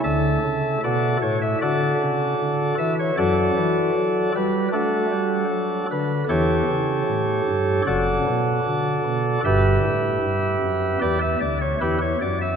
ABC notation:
X:1
M:4/4
L:1/16
Q:1/4=76
K:D
V:1 name="Pipe organ"
[Ae]4 [FAd]2 c e [FAd]6 e c | [FAd]6 B2 [DFA]6 B2 | [GAc]8 [FAd]8 | [GBe]8 [GBd] e d c [EGB] c d e |]
V:2 name="Pipe organ" clef=bass
[D,,D,]2 C,2 B,,2 A,,2 D,2 C,2 D,2 E,2 | [F,,F,]2 E,2 F,2 G,2 A,2 G,2 F,2 D,2 | [E,,E,]2 C,2 A,,2 G,,2 [F,,,F,,]2 B,,2 D,2 B,,2 | [G,,,G,,]2 A,,2 G,,2 F,,2 E,,2 D,,2 E,,2 F,,2 |]